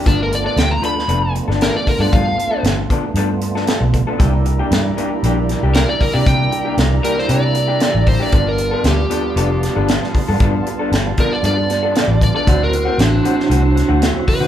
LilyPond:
<<
  \new Staff \with { instrumentName = "Horn section" } { \time 4/4 \key g \mixolydian \tempo 4 = 116 r1 | r1 | <d'' e'' bes''>1~ | <d'' e'' bes''>1 |
<b f'' a''>1~ | <b f'' a''>1 | <c'' e'' fis''>1 | }
  \new Staff \with { instrumentName = "Electric slide guitar" } { \time 4/4 \key g \mixolydian d'16 bes'16 d''16 d''16 g''16 bes''16 b''4 r8 bes'16 d''16 bes'16 d''16 | f''4 r2. | r2. bes'16 d''16 bes'16 d''16 | g''4 r8 bes'16 c''16 d''4. c''16 d''16~ |
d''16 bes'8. g'2 r4 | r4. bes'16 d''16 d''4. d''16 d''16~ | d''16 bes'8. d'2 r8 b'8 | }
  \new Staff \with { instrumentName = "Clean electric guitar" } { \time 4/4 \key g \mixolydian <f b d' a'>16 r8 <b d' a'>16 r8 <f b d' a'>16 r16 <f b d' a'>16 r8 <b d' a'>16 r8. <b d' a'>16 | <f b d' a'>16 r8 <b d' a'>16 r8 <f b d' a'>16 r16 <f b d' a'>16 r8 <b d' a'>16 r8. <b d' a'>16 | <e bes d' g'>16 r8 <bes d' g'>16 r8 <e bes d' g'>16 r16 <e bes d' g'>16 r8 <bes d' g'>16 r8. <bes d' g'>16 | <e bes d' g'>16 r8 <bes d' g'>16 r8 <e bes d' g'>16 r16 <e bes d' g'>16 r8 <bes d' g'>16 r8. <bes d' g'>16 |
<f b d' a'>16 r8 <b d' a'>16 r8 <f b d' a'>16 r16 <f b d' a'>16 r8 <b d' a'>16 r8. <b d' a'>16 | <f b d' a'>16 r8 <b d' a'>16 r8 <f b d' a'>16 r16 <f b d' a'>16 r8 <b d' a'>16 r8. <b d' a'>16 | <e a c' fis'>16 r8 <a c' fis'>16 r8 <e a c' fis'>16 r16 <e a c' fis'>16 r8 <a c' fis'>16 r8. <a c' fis'>16 | }
  \new Staff \with { instrumentName = "Tonewheel organ" } { \time 4/4 \key g \mixolydian <a b d' f'>1~ | <a b d' f'>1 | <g bes d' e'>1~ | <g bes d' e'>1 |
<g b d' f'>1~ | <g b d' f'>1 | <fis c' e' fis'>1 | }
  \new Staff \with { instrumentName = "Fingered electric bass" } { \clef bass \time 4/4 \key g \mixolydian g,,4 d,8 r8 f,,8. g,,8 r8 g,16 | g,8 r8 g,,8 r8 g,4~ g,16 b,,8 r16 | c,4 g,8 r8 bes,,8. c,8 r8 c16 | c8 r8 c,8 r8 c4~ c16 a,,8 r16 |
g,,4 d,8 r8 f,,8. g,,8 r8 g,16 | g,8 r8 g,,8 r8 g,4~ g,16 a,,8 r16 | d,4 a,,8 r8 c,8. d,8 r8 d16 | }
  \new DrumStaff \with { instrumentName = "Drums" } \drummode { \time 4/4 <hh bd>8 hh8 <hh sn>8 hh16 sn16 hh8 hh16 sn16 <hh sn>8 <hho bd>8 | <hh bd>8 hh8 <hh sn>8 <hh bd>8 hh8 hh16 sn16 <hh sn>8 <hh bd>8 | <hh bd>8 hh8 <hh sn>8 hh8 hh8 <hh sn>8 <hh sn>8 <hho bd>8 | <hh bd>8 hh8 <hh sn>8 hh16 sn16 hh8 hh8 <hh sn>8 <hho bd>8 |
<hh bd>8 hh8 <hh sn>8 hh8 hh8 <hh sn>8 <hh sn>16 sn16 <hho bd>8 | <hh bd>8 hh8 <hh sn>8 <hh bd>8 hh8 <hh sn>8 <hh sn>8 <hh bd>8 | <hh bd>8 hh8 <hh sn>8 hh16 sn16 hh8 <hh sn>8 <hh sn>8 <hho bd>8 | }
>>